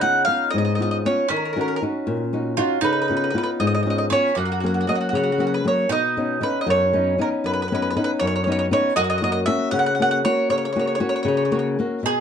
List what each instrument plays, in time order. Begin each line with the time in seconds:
Already playing: nylon-string guitar C#3, mandolin D#4
0.01 nylon-string guitar B3 C#4 F4, mandolin F#5
0.25 nylon-string guitar B3 C#4 F4, mandolin F5
0.51 nylon-string guitar G#2, mandolin D#5
0.58 mandolin D#5
0.65 mandolin D#5
0.75 nylon-string guitar B3, mandolin D#5
0.80 nylon-string guitar C#4 F4, mandolin D#5
0.91 mandolin D#5
1.05 nylon-string guitar B3 C#4 F4, mandolin C#5
1.29 nylon-string guitar D#3, mandolin C#4 A#4
1.36 mandolin A#4
1.45 mandolin A#4
1.53 nylon-string guitar C#4 D#4 F#4, mandolin A#4
1.61 mandolin A#4
1.68 mandolin A#4
1.76 mandolin A#4
1.82 nylon-string guitar C#4 D#4 F#4
2.07 nylon-string guitar A#2
2.33 nylon-string guitar C#4 D#4 F#4
2.57 nylon-string guitar C#4 D#4 F#4, mandolin F4
2.81 nylon-string guitar C#3, mandolin D#4 B4
2.93 mandolin B4
3.02 mandolin B4
3.08 nylon-string guitar B3 C#4 F4, mandolin B4
3.17 mandolin B4
3.24 mandolin B4
3.30 nylon-string guitar B3 C#4, mandolin B4
3.35 nylon-string guitar F4, mandolin B4
3.43 mandolin B4
3.60 nylon-string guitar G#2, mandolin D#5
3.67 mandolin D#5
3.75 mandolin D#5
3.83 nylon-string guitar B3 C#4 F4, mandolin D#5
3.90 mandolin D#5
3.98 mandolin D#5
4.10 nylon-string guitar B3 C#4 F4, mandolin C#4 C#5
4.35 nylon-string guitar F#2, mandolin A#3 F#4
4.45 mandolin F#4
4.52 mandolin F#4
4.60 nylon-string guitar F#3 A#3 C#4, mandolin F#4
4.66 mandolin F#4
4.74 mandolin F#4
4.81 mandolin F#4
4.87 nylon-string guitar F#3 A#3 C#4, mandolin F#4 D#5
4.95 mandolin F#4
5.01 mandolin F#4
5.09 nylon-string guitar C#3, mandolin F#4
5.15 mandolin F#4 C#5
5.23 mandolin F#4
5.32 mandolin F#4
5.38 nylon-string guitar F#3 A#3 C#4, mandolin F#4
5.47 mandolin F#4
5.54 mandolin B4
5.64 nylon-string guitar F#3 A#3 C#4, mandolin C#5
5.89 nylon-string guitar B2, mandolin D#4 D#5
6.17 nylon-string guitar B3 C#4 D#4
6.41 nylon-string guitar B3 C#4 D#4, mandolin B4
6.61 mandolin D#5
6.66 nylon-string guitar F#2, mandolin C#5
6.93 nylon-string guitar B3 C#4 D#4
7.18 nylon-string guitar B3 C#4 D#4, mandolin A#4
7.44 nylon-string guitar F#2, mandolin B4
7.53 mandolin B4
7.62 mandolin B4
7.68 nylon-string guitar B3 C#4, mandolin B4
7.73 nylon-string guitar D#4, mandolin B4
7.82 mandolin B4
7.90 mandolin B4
7.96 nylon-string guitar B3 C#4 D#4, mandolin B4
8.04 mandolin B4
8.19 nylon-string guitar F#2, mandolin C#5
8.27 mandolin C#5
8.36 mandolin C#5
8.44 nylon-string guitar B3 C#4 D#4, mandolin C#5
8.52 mandolin C#5
8.59 mandolin C#5
8.71 nylon-string guitar B3 C#4 D#4, mandolin C#5
8.96 nylon-string guitar F#2, mandolin F#4 D#5
9.04 mandolin D#5
9.10 mandolin D#5
9.18 nylon-string guitar A#3, mandolin D#5
9.22 nylon-string guitar C#4 F#4, mandolin D#5
9.32 mandolin D#5
9.46 nylon-string guitar A#3 C#4 F#4, mandolin E5
9.71 nylon-string guitar C#3, mandolin F#5
9.79 mandolin F#5
9.86 mandolin F#5
9.95 mandolin F#5
10.00 nylon-string guitar A#3 C#4 F#4, mandolin F#5
10.11 mandolin F#5
10.25 nylon-string guitar A#3 C#4 F#4, mandolin C#5
10.50 nylon-string guitar C#3, mandolin C#5
10.58 mandolin C#5
10.65 mandolin C#5
10.73 nylon-string guitar A#3 C#4 F#4, mandolin C#5
10.79 mandolin C#5
10.87 mandolin C#5
10.95 mandolin C#5
11.00 nylon-string guitar A#3 C#4 F#4, mandolin C#5
11.09 mandolin C#5
11.16 mandolin C#5
11.23 nylon-string guitar C#3, mandolin C#5
11.28 mandolin C#5
11.37 mandolin C#5
11.45 mandolin C#5
11.51 nylon-string guitar A#3 C#4 F#4, mandolin C#5
11.59 mandolin C#5
11.79 nylon-string guitar A#3 C#4 F#4
12.03 nylon-string guitar B2, mandolin G#4